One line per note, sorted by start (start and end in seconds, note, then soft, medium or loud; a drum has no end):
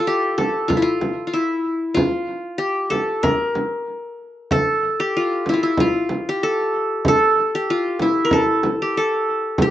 0.00 0.68 F4 medium
0.00 0.37 A4 medium
0.07 1.33 G4 medium
0.38 1.55 A4 medium
0.38 frame drum medium
0.68 0.82 F4 medium
0.68 frame drum medium
0.77 0.88 E4 medium
0.82 1.27 F4 medium
1.01 frame drum medium
1.27 1.39 F4 medium
1.33 2.00 E4 medium
1.94 3.29 F4 medium
1.94 frame drum medium
2.58 3.84 G4 medium
2.90 3.29 A4 medium
2.90 frame drum medium
3.23 4.35 A#4 medium
3.23 frame drum medium
3.55 frame drum medium
4.51 5.69 A4 loud
4.51 frame drum medium
5.00 6.25 G4 medium
5.17 5.53 F4 medium
5.46 5.60 E4 medium
5.46 frame drum medium
5.54 5.69 F4 medium
5.63 5.86 E4 medium
5.77 7.15 F4 medium
5.77 frame drum medium
6.09 frame drum medium
6.29 7.54 G4 medium
6.43 7.08 A4 medium
7.05 8.31 A4 loud
7.05 frame drum medium
7.55 8.80 G4 medium
7.70 8.08 F4 medium
8.00 9.41 E4 medium
8.00 frame drum medium
8.25 8.39 A#4 medium
8.31 8.97 A4 medium
8.31 frame drum medium
8.63 frame drum medium
8.82 9.62 G4 medium
8.97 9.71 A4 medium
9.58 9.71 G4 medium
9.58 frame drum medium